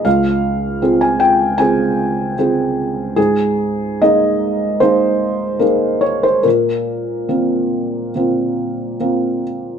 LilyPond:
\new Staff \with { instrumentName = "Felt piano" } { \time 4/4 \key aes \major \tempo 4 = 74 << { f''4~ f''16 aes''16 g''8 aes''4 r4 | aes'4 ees''4 c''4 bes'8 des''16 c''16 | bes'2.~ bes'8 r8 | } \\ { des,4 <c' f' aes'>4 <c' f' aes'>4 <c' f' aes'>4 | aes,4 <bes ees' aes'>4 <bes ees' aes'>4 <bes ees' aes'>4 | bes,4 <bes c' f'>4 <bes c' f'>4 <bes c' f'>4 | } >> }